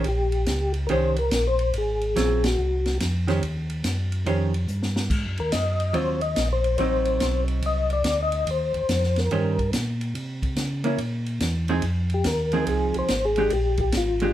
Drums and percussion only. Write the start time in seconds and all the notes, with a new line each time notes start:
0.04 ride
0.32 ride
0.46 snare, hi-hat pedal, ride
0.74 ride
0.89 ride
1.16 ride
1.31 snare, hi-hat pedal, ride
1.59 ride
1.73 ride
2.01 ride
2.16 snare, hi-hat pedal, ride
2.44 snare, ride
2.86 snare, ride
3.00 snare, hi-hat pedal, ride
3.28 snare, ride
3.43 ride
3.70 ride
3.84 snare, hi-hat pedal, ride
4.12 ride
4.26 ride
4.54 ride
4.68 hi-hat pedal
4.82 snare
4.96 snare
5.10 kick, crash
5.37 ride
5.52 snare, hi-hat pedal, ride
5.80 ride
5.94 ride
6.21 ride
6.36 snare, hi-hat pedal, ride
6.64 ride
6.78 ride
7.05 ride
7.20 snare, hi-hat pedal, ride
7.48 ride
7.62 ride
7.90 ride
8.04 snare, hi-hat pedal, ride
8.32 ride
8.47 ride
8.74 ride
8.89 snare, hi-hat pedal, ride
9.03 snare
9.16 snare, ride
9.31 ride
9.59 kick, ride
9.73 snare, hi-hat pedal, ride
10.01 ride
10.15 ride
10.42 kick, ride
10.56 snare, hi-hat pedal, ride
10.84 ride
10.98 ride
11.26 ride
11.40 snare, hi-hat pedal, ride
11.68 ride
11.82 ride
12.10 ride
12.24 snare, hi-hat pedal, ride
12.52 ride
12.67 ride
12.94 ride
13.08 snare, hi-hat pedal, ride
13.36 ride
13.50 ride
13.77 kick, ride
13.92 snare, hi-hat pedal, ride
14.20 ride